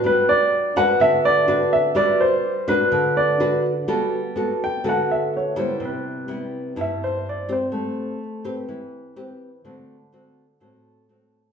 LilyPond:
<<
  \new Staff \with { instrumentName = "Grand piano" } { \time 4/4 \key g \major \tempo 4 = 125 b'8 d''4 fis''8 e''8 d''4 e''8 | d''8 c''4 b'4 d''4 r8 | r4. g''8 fis''8 e''8 cis''8 c''8 | b'4 r4 e''8 c''8 d''8 c''8~ |
c''4 r2. | r1 | }
  \new Staff \with { instrumentName = "Nylon-string guitar" } { \time 4/4 \key g \major << { <d' fis' b'>4. <d' fis' b'>4. <d' fis' b'>8 r8 | <d' fis' b'>4 r8 <d' fis' b'>4. <d' fis' b'>8 r8 | <b fis' a'>8 r8 <b fis' a'>8 r8 <b fis' a'>4. <g b e'>8~ | <g b e'>4 <g b e'>4 <g b e'>4. <c' g'>8~ |
<c' g'>4 r8 <c' g' b'>4. <c' g' b'>8 r8 | <a c' fis'>8 r8 <a c' fis'>8 r8 <a c' fis'>4 <a c' fis'>8 r8 | } \\ { g2 d2 | g2 d2 | g2 d2 | c2 g,2 |
a2 e2 | d2 a,2 | } >> }
>>